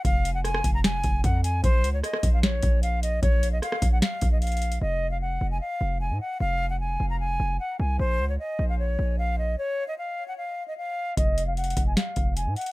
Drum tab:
HH |x-----------x-----------x-----------x-----------x-----------x-----------x-----------x-----------|x-----------x-----------x-----------x-----------x-----------x-----------x-----------x-----------|x-----------x-----------x-----------x-----------x-----------x-----------x--x--x--x--x-----x-----|------------------------------------------------------------------------------------------------|
SD |------------------------r-----r-----------------o-----------------------------------------------|------------------------r-----r-----------------o-----------------------------------------------|------------------------r-----r-----------------o-----------------------------------------------|------------------------------------------------------------------------------------------------|
BD |o-----------------------------------o-----------------------o-----------o-----------------------|o-----------------------------------o-----------------------o-----------------------------------|o-----------------------------------o-----------------------o-----------------------------------|------------------------------------------------------------------------------------------------|

HH |------------------------------------------------------------------------------------------------|------------------------------------------------------------------------------------------------|------------------------------------------------------------------------------------------------|x-----------x-----------x---x---x---x-----------x-----------x-----------x-----------x--x--x-----|
SD |------------------------------------------------------------------------------------------------|------------------------------------------------------------------------------------------------|------------------------------------------------------------------------------------------------|------------------------------------------------o-----------------------------------------------|
BD |------------------------------------------------------------------------------------------------|------------------------------------------------------------------------------------------------|------------------------------------------------------------------------------------------------|o-----------------------------------o-----------------------o-----------------------------------|